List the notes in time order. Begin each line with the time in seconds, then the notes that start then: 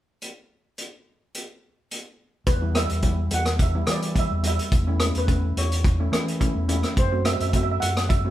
0.22 closed hi-hat
0.78 closed hi-hat
1.34 closed hi-hat
1.91 closed hi-hat
2.46 E2 B4, kick, closed hi-hat
2.61 G3 B3 E4
2.75 G3 B3 E4 E5, cross-stick, closed hi-hat
2.89 E2, closed hi-hat
3.02 G3 B3 E4, kick, closed hi-hat
3.31 E2 F#5, closed hi-hat
3.45 cross-stick, closed hi-hat
3.59 E5, kick, closed hi-hat
3.75 G3 B3 E4
3.87 E3 G3 B3 E4, cross-stick, closed hi-hat
3.91 D5
4.02 closed hi-hat
4.14 G3 B3 E4, kick, closed hi-hat
4.19 E5
4.31 E2
4.43 G3 B3 E4, closed hi-hat
4.47 E5
4.59 closed hi-hat
4.72 E2, kick, closed hi-hat
4.87 A3 C#4 E4
5.00 A3 C#4 E4, cross-stick, closed hi-hat
5.15 E2 B4, closed hi-hat
5.27 A3 C#4 E4, kick, closed hi-hat
5.57 E2 C#5, closed hi-hat
5.72 closed hi-hat
5.84 kick, closed hi-hat
5.99 A3 C#4 E4
6.12 E3 A3 C#4 E4, cross-stick, closed hi-hat
6.28 closed hi-hat
6.40 A3 C#4 E4, kick, closed hi-hat
6.56 E2
6.68 A3 C#4 E4, closed hi-hat
6.83 cross-stick, closed hi-hat
6.97 F#2 C5, kick, closed hi-hat
7.12 A3 C4 F#4
7.25 A3 C4 F#4 E5, cross-stick, closed hi-hat
7.33 E5
7.40 F#2 E5, closed hi-hat
7.49 E5, kick, closed hi-hat
7.54 A3 C4 F#4 E5
7.63 E5
7.71 E5
7.80 F#2 F#5, closed hi-hat
7.97 cross-stick, closed hi-hat
8.09 E5, kick, closed hi-hat
8.25 A3 C4 F#4